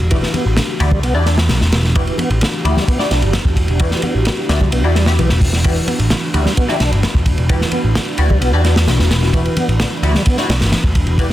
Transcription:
Already playing: E3 D4 F#4 G4
0.00 E1, ride
0.11 E1 E3 E4 F#4 G4 D5, kick, ride
0.23 snare
0.34 B3, ride, high conga
0.46 A1
0.57 D3, snare, ride
0.80 D2 E4 F#4 G4 D5, ride
0.91 G3, kick, high conga, low conga
1.03 B1 B3, ride
1.15 E2 D4 E4 F#4 G4 D5
1.26 D4, snare, ride
1.38 snare
1.49 B1, snare, ride, high conga
1.61 E1, snare
1.72 E1, snare, ride
1.84 snare
1.95 E1 E3 E4 F#4 G4 D5, kick, ride
2.07 ride
2.18 B3, ride, high conga
2.30 A1, ride
2.41 D3, snare, ride
2.65 D2 E4 F#4 G4 D5, ride
2.76 G3, snare, high conga
2.88 B3, kick, ride
2.99 D4 E4 F#4 G4 D5, snare
3.11 B1 D4, snare, ride
3.22 G1, ride
3.33 snare, ride, high conga
3.45 E1, kick
3.56 kick, ride
3.68 E1, ride
3.79 E1 E3 E4 F#4 G4 D5, kick, ride
3.91 snare
4.02 B3, ride, high conga
4.15 A1
4.25 D3, snare, ride
4.49 D2 E4 F#4 G4 D5, snare, ride
4.61 G3, kick, high conga, low conga
4.72 B1 B3, ride
4.84 E2 D4 E4 F#4 G4 D5
4.95 G3, snare, ride
5.06 E4 F#4 G4 E5, snare
5.19 B1 E3, ride, high conga
5.29 E1, snare
5.41 E1, kick, open hi-hat
5.53 snare
5.64 E1 E3 E4 F#4 G4 B4 D5, kick, ride
5.76 ride
5.87 B3, ride, high conga
5.99 A1, ride
6.10 D3, snare, ride
6.34 D2 E4 F#4 G4 D5, ride
6.45 G3, snare, high conga
6.57 B3, kick, ride
6.68 D4 E4 F#4 G4 D5, snare
6.80 B1 D4, snare, ride
6.92 G1, ride
7.03 snare, ride, high conga
7.15 E1, kick
7.26 kick, ride
7.38 E1, ride
7.49 E1 E3 E4 F#4 G4 D5, kick, ride
7.61 snare
7.72 B3, ride, high conga
7.84 A1
7.95 D3, snare, ride
8.18 D2 E4 F#4 G4 D5, ride
8.30 G3, kick, high conga, low conga
8.42 B1 B3, ride
8.53 E2 D4 E4 F#4 G4 D5
8.65 D4, snare, ride
8.76 snare
8.87 B1, snare, ride, high conga
8.99 E1, snare
9.11 E1, snare, ride
9.22 snare
9.33 E1 E3 E4 F#4 G4 D5, kick, ride
9.45 ride
9.57 B3, ride, high conga
9.69 A1, ride
9.80 D3, snare, ride
10.03 D2 E4 F#4 G4 D5, ride
10.15 G3, snare, high conga
10.26 B3, kick, ride
10.37 D4 E4 F#4 G4 D5, snare
10.50 B1 D4, snare, ride
10.61 G1, snare, ride
10.72 snare, ride, high conga
10.84 E1, kick
10.95 kick, ride
11.07 E1, ride
11.18 E1 E3 E4 F#4 G4 D5, kick, ride

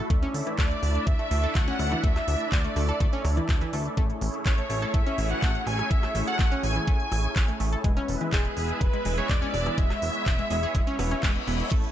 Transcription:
Already playing: A3 E4
0.10 D2 A3 D4 A4 D5 E5, kick, closed hi-hat
0.23 C#4 C#5, closed hi-hat
0.34 D2, open hi-hat
0.47 E3 E4, closed hi-hat
0.58 D2 A3 A4 D5, kick, clap, closed hi-hat
0.71 closed hi-hat
0.83 D2, open hi-hat
0.95 closed hi-hat
1.07 D2 E5, kick, closed hi-hat
1.19 A3 A4, closed hi-hat
1.31 D2 A3 A4, open hi-hat
1.43 A4 A5, closed hi-hat
1.55 D2 A3 A4 F#5, kick, clap, closed hi-hat
1.68 C#4 C#5, closed hi-hat
1.79 D2, cross-stick, open hi-hat
1.92 E3 E4, cross-stick, closed hi-hat
2.04 D2 A3 A4 E5, kick, closed hi-hat
2.16 cross-stick, clap, closed hi-hat
2.28 D2, open hi-hat
2.40 closed hi-hat
2.52 D2 D5, kick, clap, closed hi-hat
2.64 A3 A4, closed hi-hat
2.76 D2 A3 A4, open hi-hat
2.89 A4 A5, closed hi-hat
3.00 D2 A3 A4, kick, closed hi-hat
3.13 C#4 C#5, closed hi-hat
3.25 D2, cross-stick, open hi-hat
3.37 E3 E4, closed hi-hat
3.49 D2 A4 A5, kick, clap, closed hi-hat
3.61 E3 E4, closed hi-hat
3.73 D2 A3 A4, open hi-hat
3.85 closed hi-hat
3.97 A1 A3 C#4 E4 G#4 A4 C#5, kick, closed hi-hat
4.10 closed hi-hat
4.21 A1, open hi-hat
4.34 closed hi-hat
4.46 A1 C#5, kick, clap, closed hi-hat
4.58 A3 A4, closed hi-hat
4.70 A1 A3 A4, open hi-hat
4.82 A4 A5, closed hi-hat
4.94 A1 A3 A4 E5, kick, closed hi-hat
5.06 C#4 C#5, closed hi-hat
5.18 A1, open hi-hat
5.31 E3 E4 F#5, closed hi-hat
5.42 A1 A3 A4, kick, clap, closed hi-hat
5.55 closed hi-hat
5.67 A1 G#5, cross-stick, open hi-hat
5.79 cross-stick, closed hi-hat
5.91 A1 E5, kick, closed hi-hat
6.03 A3 A4, cross-stick, clap, closed hi-hat
6.15 A1 A3 A4, open hi-hat
6.27 A4 F#5 A5, closed hi-hat
6.39 A1 A3 A4, kick, clap, closed hi-hat
6.52 C#4 C#5, closed hi-hat
6.63 A1 G#5, open hi-hat
6.76 E3 E4, closed hi-hat
6.87 A1 A3 A4 G#5, kick, closed hi-hat
7.00 closed hi-hat
7.12 A1, cross-stick, open hi-hat
7.24 closed hi-hat
7.36 A1, kick, clap, closed hi-hat
7.48 A3 A4, closed hi-hat
7.60 A1 A3 A4, open hi-hat
7.72 A4 A5, closed hi-hat
7.84 E1 G#3 B3 E4 G#4 B4 E5, kick, closed hi-hat
7.97 C#4 C#5, closed hi-hat
8.08 E1, open hi-hat
8.21 E3 E4, closed hi-hat
8.33 E1 G#3 G#4, kick, clap, closed hi-hat
8.45 closed hi-hat
8.57 E1, open hi-hat
8.69 closed hi-hat
8.81 E1 B4, kick, closed hi-hat
8.93 G#3 G#4, closed hi-hat
9.05 E1 G#3 G#4, open hi-hat
9.18 G#4 C#5 G#5, closed hi-hat
9.29 E1 G#3 G#4 D5, kick, clap, closed hi-hat
9.42 C#4 C#5, closed hi-hat
9.54 E1, cross-stick, open hi-hat
9.66 E3 E4, cross-stick, closed hi-hat
9.78 E1 G#3 G#4 C#5 E5, kick, closed hi-hat
9.90 cross-stick, clap, closed hi-hat
10.02 E1, open hi-hat
10.15 closed hi-hat
10.26 E1, kick, clap, closed hi-hat
10.39 G#3 G#4, closed hi-hat
10.51 E1 G#3 G#4, open hi-hat
10.63 G#4 G#5, closed hi-hat
10.75 E1 G#3 G#4, kick, closed hi-hat, reverse cymbal
10.87 C#4 C#5, closed hi-hat
10.99 E1 B3 B4, cross-stick, open hi-hat
11.11 C#4 C#5, closed hi-hat
11.23 E1 G#3 G#4, kick, clap, closed hi-hat
11.36 closed hi-hat
11.47 E1 B3 B4, open hi-hat
11.60 closed hi-hat
11.71 A1 A3 C#4 A4 C#5, kick, closed hi-hat, ride, crash
11.84 closed hi-hat

